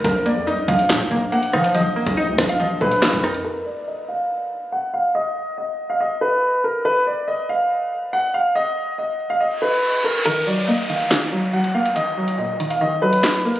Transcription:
0.04 A#1 F3 A#4, kick, closed hi-hat
0.26 A#3 D5, closed hi-hat
0.36 F2
0.47 D#4 D#5
0.52 A#1
0.68 A#1 F3 F5, kick, closed hi-hat
0.79 closed hi-hat
0.90 A#2 F3, snare, clap, closed hi-hat
1.00 A#1
1.11 A#1 A#3
1.32 A#3 F#5
1.43 closed hi-hat
1.53 F3 D#4 F5, cross-stick
1.64 closed hi-hat
1.75 F3 D#5, closed hi-hat
1.80 A#1
1.96 A#3
2.06 A#1, kick, closed hi-hat
2.17 D#4 D#5
2.28 D2
2.38 A#1 F3, kick, cross-stick, snare, closed hi-hat
2.49 F5, closed hi-hat
2.60 G#1 F3 D#5
2.70 A#1
2.81 A#1 A#2 B4
2.92 closed hi-hat
3.02 G#1 A#3, snare, clap
3.13 F2, kick
3.23 D#4 A#4, cross-stick, closed hi-hat
3.34 closed hi-hat
3.45 A#4
3.66 D5
3.87 D#5
4.08 F5
4.72 F#5
4.94 F5
5.15 D#5
5.58 D#5
5.90 F5
6.00 D#5
6.21 B4
6.64 A#4
6.85 B4
7.07 D5
7.28 D#5
7.49 F5
8.13 F#5
8.34 F5
8.55 D#5
8.98 D#5
9.30 F5
9.40 D#5, reverse cymbal
9.62 B4
10.04 A#4
10.25 D#3 A#4, closed hi-hat, crash, downlifter
10.47 F#3 D5, closed hi-hat
10.68 A#3 D#5
10.89 D#3 F5, closed hi-hat
11.00 closed hi-hat
11.11 D#3, snare, clap, closed hi-hat
11.32 F#3
11.53 F#3 F#5
11.64 closed hi-hat
11.74 A#3 F5
11.86 closed hi-hat
11.96 D#3 D#5, closed hi-hat
12.17 F#3
12.28 closed hi-hat
12.38 A#2 D#5
12.60 D#3, closed hi-hat
12.70 F5, closed hi-hat
12.81 D#3 D#5
13.02 F#3 B4
13.13 closed hi-hat
13.24 F#3, snare, clap
13.45 A#3 A#4, open hi-hat
13.56 closed hi-hat

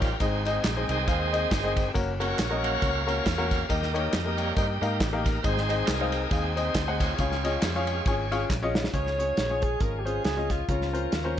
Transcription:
Already playing: A1 F3 G3 C#4 D#4 F4 G4 A#4 C#5
0.02 kick, snare, ride bell, tambourine
0.20 G#1 G#2 C4 D#4 G#4 C5 D#5, kick, ride bell, tambourine
0.45 C4 D#4 G#4 C5 D#5, ride bell, tambourine
0.64 A#1, snare, clap, ride bell, tambourine
0.76 C4 D#4 G#4 C5 D#5
0.89 C2 D#3 G#3 C4 G#4 C5 D#5, ride bell, tambourine
1.08 D#2 C4 D#4 G#4 C5 F5, kick, ride bell, tambourine
1.32 C4 D#4 G#4 C5 D#5, ride bell, tambourine
1.51 G1, kick, snare, clap, ride bell, tambourine
1.63 C4 D#4 G#4 C5 D#5
1.77 kick, ride bell, tambourine
1.94 F#1 A#3 C#4 F#4 A#4 C#5, kick, ride bell, tambourine
2.20 A#3 C#4 F#4 A#4 C#5, ride bell, tambourine
2.39 A#1, snare, clap, ride bell, tambourine
2.50 A#3 C#4 F#4 A#4 D#5
2.63 F#3 A#3 C#4 A#4 C#5 F5, ride bell, tambourine
2.82 C#2 A#3 C#4 F#4 A#4 C#5, kick, ride bell, tambourine
3.07 A#3 C#4 F#4 A#4 C#5, ride bell, tambourine
3.26 E2, kick, snare, clap, ride bell, tambourine
3.38 A#3 C#4 F#4 A#4 C#5
3.51 kick, snare, ride bell, tambourine
3.69 D#2 D#3 A#3 D#4 G4 A#4 D#5, kick, ride bell, tambourine
3.83 snare
3.94 A#3 D#4 G4 A#4 C#5, ride bell, tambourine
4.13 F2, snare, clap, ride bell, tambourine
4.25 A#3 D#4 G4 A#4 D#5
4.37 G3 A#3 D#4 C#5, ride bell, tambourine
4.56 G2 A#3 D#4 G4 A#4 C5 D#5, kick, ride bell, tambourine
4.81 G#2 A#3 D#4 G4 A#4 F5, ride bell, tambourine
5.00 A1 G4, kick, snare, clap, ride bell, tambourine
5.13 A#3 D#4 G4 A#4 F5
5.24 A#4, kick, snare, ride bell, tambourine
5.43 G#1 G#2 G#3 C4 D#4 G#4 C5 D#5, kick, ride bell, tambourine
5.57 snare
5.69 C4 D#4 G#4 C5 D#5, ride bell, tambourine
5.86 C2 D#4 A#4, snare, clap, ride bell, tambourine
6.00 C4 D#4 G#4 C5 F5
6.12 ride bell, tambourine
6.29 D#2 G#3 C4 D#4 G#4 C5 F5, kick, ride bell, tambourine
6.56 C4 D#4 G#4 C5 D#5, ride bell, tambourine
6.65 D#4 G#4 C5
6.74 D2, kick, snare, clap, ride bell, tambourine
6.87 C4 D#4 G#4 C5 F#5
6.99 F4 G#4 C#5, kick, snare, ride bell, tambourine
7.18 C#2 C#3 C#4 F4 G#4 C#5 F5, kick, ride bell, tambourine
7.32 snare
7.44 C#4 F4 G#4 C#5 D#5, ride bell, tambourine
7.62 F2, snare, clap, ride bell, tambourine
7.75 C#4 F4 G#4 C#5 F5
7.87 G#3 C#4 F4, ride bell, tambourine
8.06 G#1 C#4 F4 G#4 C#5 G#5, kick, ride bell, tambourine
8.31 C#4 F4 G#4 C#5 F5, ride bell, tambourine
8.50 A#1, kick, snare, clap, tambourine
8.62 C#4 F4 G#4 C#5 D#5
8.75 snare, tambourine
8.84 snare
8.93 C#2 C#3 F3 G#3 C#4 F4 G4 G#4 C#5, kick, closed hi-hat
8.99 G#4
9.07 snare
9.18 C#4 F4 G#4 C#5, closed hi-hat
9.37 A#1, snare, closed hi-hat
9.49 C#4 F4 G#4 C#5
9.62 G#4, kick, closed hi-hat
9.80 G#1 C#4 F4 G#4 A#4, kick, closed hi-hat
9.99 G4
10.05 C#4 F4 G#4 C5, closed hi-hat
10.24 C#2 G#4, snare, closed hi-hat
10.37 C#4 F4 G#4 D#5
10.50 F4, kick, snare, closed hi-hat
10.69 C#2 C#3 F3 A#3 C#4 F4 A#4 C#5, kick, closed hi-hat
10.82 snare
10.93 C#4 F4 A#4 C5, closed hi-hat
11.12 D#2, snare, closed hi-hat
11.24 C#4 F4 A#4 C5

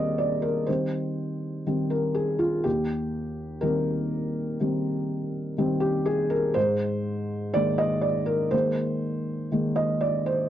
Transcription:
Already playing: D#2 D#3 G3 C4 G#4 A#4 C5 D5 D#5
0.18 D5
0.42 A#4
0.67 D#3 G3 C4 C5
1.67 D#3 G3 C4
1.90 A#4
2.15 G#4
2.39 F4
2.64 D#2 G4
3.61 D#3 G3 C4 A#4
4.60 D#3 G3 C4
5.58 D#3 G3 C4
5.80 G4
6.06 G#4
6.30 A#4
6.54 G#2 C5
7.54 D#3 G#3 A#3 D5
7.78 D#5
8.01 D5
8.26 A#4
8.51 D#3 G#3 A#3 C5
9.52 D#3 G#3 A#3
9.76 D#5
10.01 D5
10.26 C5

